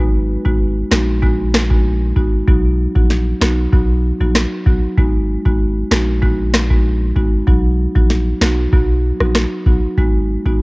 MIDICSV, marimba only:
0, 0, Header, 1, 2, 480
1, 0, Start_track
1, 0, Key_signature, 5, "minor"
1, 0, Tempo, 625000
1, 1902, Time_signature, 4, 2, 24, 8
1, 8156, End_track
2, 0, Start_track
2, 0, Title_t, "Marimba"
2, 0, Program_c, 0, 12
2, 0, Note_on_c, 0, 56, 87
2, 0, Note_on_c, 0, 59, 82
2, 0, Note_on_c, 0, 63, 81
2, 0, Note_on_c, 0, 66, 92
2, 317, Note_off_c, 0, 56, 0
2, 317, Note_off_c, 0, 59, 0
2, 318, Note_off_c, 0, 63, 0
2, 319, Note_off_c, 0, 66, 0
2, 344, Note_on_c, 0, 56, 76
2, 345, Note_on_c, 0, 59, 69
2, 347, Note_on_c, 0, 63, 71
2, 350, Note_on_c, 0, 66, 85
2, 461, Note_off_c, 0, 56, 0
2, 462, Note_off_c, 0, 59, 0
2, 462, Note_off_c, 0, 63, 0
2, 464, Note_off_c, 0, 66, 0
2, 697, Note_on_c, 0, 56, 76
2, 697, Note_on_c, 0, 59, 68
2, 698, Note_on_c, 0, 63, 67
2, 701, Note_on_c, 0, 66, 80
2, 828, Note_off_c, 0, 56, 0
2, 828, Note_off_c, 0, 59, 0
2, 829, Note_off_c, 0, 63, 0
2, 830, Note_off_c, 0, 66, 0
2, 938, Note_on_c, 0, 56, 87
2, 939, Note_on_c, 0, 59, 76
2, 941, Note_on_c, 0, 63, 77
2, 943, Note_on_c, 0, 66, 95
2, 1068, Note_off_c, 0, 56, 0
2, 1069, Note_off_c, 0, 59, 0
2, 1070, Note_off_c, 0, 63, 0
2, 1071, Note_off_c, 0, 66, 0
2, 1306, Note_on_c, 0, 56, 73
2, 1308, Note_on_c, 0, 59, 67
2, 1308, Note_on_c, 0, 63, 66
2, 1310, Note_on_c, 0, 66, 79
2, 1422, Note_off_c, 0, 56, 0
2, 1423, Note_off_c, 0, 59, 0
2, 1423, Note_off_c, 0, 63, 0
2, 1424, Note_off_c, 0, 66, 0
2, 1658, Note_on_c, 0, 56, 71
2, 1659, Note_on_c, 0, 59, 66
2, 1661, Note_on_c, 0, 63, 68
2, 1663, Note_on_c, 0, 66, 80
2, 1789, Note_off_c, 0, 56, 0
2, 1789, Note_off_c, 0, 59, 0
2, 1790, Note_off_c, 0, 63, 0
2, 1791, Note_off_c, 0, 66, 0
2, 1901, Note_on_c, 0, 54, 92
2, 1902, Note_on_c, 0, 59, 85
2, 1904, Note_on_c, 0, 63, 84
2, 1906, Note_on_c, 0, 66, 94
2, 2238, Note_off_c, 0, 54, 0
2, 2239, Note_off_c, 0, 59, 0
2, 2240, Note_off_c, 0, 63, 0
2, 2241, Note_off_c, 0, 66, 0
2, 2267, Note_on_c, 0, 54, 75
2, 2268, Note_on_c, 0, 59, 69
2, 2270, Note_on_c, 0, 63, 69
2, 2271, Note_on_c, 0, 66, 89
2, 2382, Note_off_c, 0, 54, 0
2, 2383, Note_off_c, 0, 59, 0
2, 2384, Note_off_c, 0, 63, 0
2, 2384, Note_off_c, 0, 66, 0
2, 2618, Note_on_c, 0, 54, 71
2, 2620, Note_on_c, 0, 59, 66
2, 2622, Note_on_c, 0, 63, 66
2, 2623, Note_on_c, 0, 66, 81
2, 2749, Note_off_c, 0, 54, 0
2, 2750, Note_off_c, 0, 59, 0
2, 2751, Note_off_c, 0, 63, 0
2, 2751, Note_off_c, 0, 66, 0
2, 2861, Note_on_c, 0, 54, 88
2, 2862, Note_on_c, 0, 59, 79
2, 2864, Note_on_c, 0, 63, 79
2, 2865, Note_on_c, 0, 66, 102
2, 2990, Note_off_c, 0, 54, 0
2, 2991, Note_off_c, 0, 59, 0
2, 2991, Note_off_c, 0, 63, 0
2, 2992, Note_off_c, 0, 66, 0
2, 3229, Note_on_c, 0, 54, 72
2, 3230, Note_on_c, 0, 59, 66
2, 3231, Note_on_c, 0, 63, 65
2, 3233, Note_on_c, 0, 66, 81
2, 3343, Note_off_c, 0, 54, 0
2, 3344, Note_off_c, 0, 59, 0
2, 3344, Note_off_c, 0, 63, 0
2, 3345, Note_off_c, 0, 66, 0
2, 3581, Note_on_c, 0, 54, 74
2, 3583, Note_on_c, 0, 59, 68
2, 3583, Note_on_c, 0, 63, 68
2, 3586, Note_on_c, 0, 66, 80
2, 3710, Note_off_c, 0, 54, 0
2, 3711, Note_off_c, 0, 59, 0
2, 3711, Note_off_c, 0, 63, 0
2, 3712, Note_off_c, 0, 66, 0
2, 3822, Note_on_c, 0, 56, 84
2, 3823, Note_on_c, 0, 59, 81
2, 3825, Note_on_c, 0, 63, 84
2, 3826, Note_on_c, 0, 66, 97
2, 4158, Note_off_c, 0, 56, 0
2, 4159, Note_off_c, 0, 59, 0
2, 4160, Note_off_c, 0, 63, 0
2, 4161, Note_off_c, 0, 66, 0
2, 4187, Note_on_c, 0, 56, 78
2, 4188, Note_on_c, 0, 59, 69
2, 4189, Note_on_c, 0, 63, 72
2, 4192, Note_on_c, 0, 66, 89
2, 4303, Note_off_c, 0, 56, 0
2, 4303, Note_off_c, 0, 59, 0
2, 4304, Note_off_c, 0, 63, 0
2, 4305, Note_off_c, 0, 66, 0
2, 4539, Note_on_c, 0, 56, 71
2, 4541, Note_on_c, 0, 59, 71
2, 4542, Note_on_c, 0, 63, 66
2, 4544, Note_on_c, 0, 66, 84
2, 4669, Note_off_c, 0, 56, 0
2, 4670, Note_off_c, 0, 59, 0
2, 4671, Note_off_c, 0, 63, 0
2, 4672, Note_off_c, 0, 66, 0
2, 4780, Note_on_c, 0, 56, 86
2, 4781, Note_on_c, 0, 59, 82
2, 4782, Note_on_c, 0, 63, 82
2, 4783, Note_on_c, 0, 66, 98
2, 4909, Note_off_c, 0, 56, 0
2, 4910, Note_off_c, 0, 59, 0
2, 4911, Note_off_c, 0, 63, 0
2, 4911, Note_off_c, 0, 66, 0
2, 5147, Note_on_c, 0, 56, 75
2, 5148, Note_on_c, 0, 59, 67
2, 5150, Note_on_c, 0, 63, 65
2, 5151, Note_on_c, 0, 66, 76
2, 5262, Note_off_c, 0, 56, 0
2, 5263, Note_off_c, 0, 59, 0
2, 5264, Note_off_c, 0, 63, 0
2, 5264, Note_off_c, 0, 66, 0
2, 5498, Note_on_c, 0, 56, 74
2, 5500, Note_on_c, 0, 59, 64
2, 5501, Note_on_c, 0, 63, 66
2, 5503, Note_on_c, 0, 66, 81
2, 5629, Note_off_c, 0, 56, 0
2, 5630, Note_off_c, 0, 59, 0
2, 5630, Note_off_c, 0, 63, 0
2, 5631, Note_off_c, 0, 66, 0
2, 5737, Note_on_c, 0, 54, 87
2, 5738, Note_on_c, 0, 59, 84
2, 5741, Note_on_c, 0, 63, 79
2, 5742, Note_on_c, 0, 66, 92
2, 6076, Note_off_c, 0, 54, 0
2, 6077, Note_off_c, 0, 59, 0
2, 6078, Note_off_c, 0, 63, 0
2, 6079, Note_off_c, 0, 66, 0
2, 6108, Note_on_c, 0, 54, 74
2, 6109, Note_on_c, 0, 59, 70
2, 6111, Note_on_c, 0, 63, 70
2, 6112, Note_on_c, 0, 66, 86
2, 6223, Note_off_c, 0, 54, 0
2, 6223, Note_off_c, 0, 59, 0
2, 6224, Note_off_c, 0, 63, 0
2, 6225, Note_off_c, 0, 66, 0
2, 6461, Note_on_c, 0, 54, 73
2, 6462, Note_on_c, 0, 59, 68
2, 6463, Note_on_c, 0, 63, 67
2, 6464, Note_on_c, 0, 66, 82
2, 6590, Note_off_c, 0, 54, 0
2, 6590, Note_off_c, 0, 59, 0
2, 6591, Note_off_c, 0, 63, 0
2, 6592, Note_off_c, 0, 66, 0
2, 6701, Note_on_c, 0, 54, 91
2, 6703, Note_on_c, 0, 59, 82
2, 6704, Note_on_c, 0, 63, 83
2, 6705, Note_on_c, 0, 66, 99
2, 6830, Note_off_c, 0, 54, 0
2, 6831, Note_off_c, 0, 59, 0
2, 6831, Note_off_c, 0, 63, 0
2, 6832, Note_off_c, 0, 66, 0
2, 7068, Note_on_c, 0, 54, 70
2, 7070, Note_on_c, 0, 59, 63
2, 7071, Note_on_c, 0, 63, 66
2, 7072, Note_on_c, 0, 66, 82
2, 7183, Note_off_c, 0, 54, 0
2, 7184, Note_off_c, 0, 59, 0
2, 7184, Note_off_c, 0, 63, 0
2, 7185, Note_off_c, 0, 66, 0
2, 7421, Note_on_c, 0, 54, 73
2, 7424, Note_on_c, 0, 59, 69
2, 7424, Note_on_c, 0, 63, 67
2, 7427, Note_on_c, 0, 66, 80
2, 7550, Note_off_c, 0, 54, 0
2, 7551, Note_off_c, 0, 59, 0
2, 7552, Note_off_c, 0, 63, 0
2, 7553, Note_off_c, 0, 66, 0
2, 7662, Note_on_c, 0, 56, 83
2, 7663, Note_on_c, 0, 59, 78
2, 7665, Note_on_c, 0, 63, 83
2, 7666, Note_on_c, 0, 66, 96
2, 7999, Note_off_c, 0, 56, 0
2, 7999, Note_off_c, 0, 59, 0
2, 8000, Note_off_c, 0, 63, 0
2, 8001, Note_off_c, 0, 66, 0
2, 8029, Note_on_c, 0, 56, 78
2, 8031, Note_on_c, 0, 59, 72
2, 8033, Note_on_c, 0, 63, 70
2, 8034, Note_on_c, 0, 66, 87
2, 8143, Note_off_c, 0, 56, 0
2, 8144, Note_off_c, 0, 59, 0
2, 8145, Note_off_c, 0, 63, 0
2, 8146, Note_off_c, 0, 66, 0
2, 8156, End_track
0, 0, End_of_file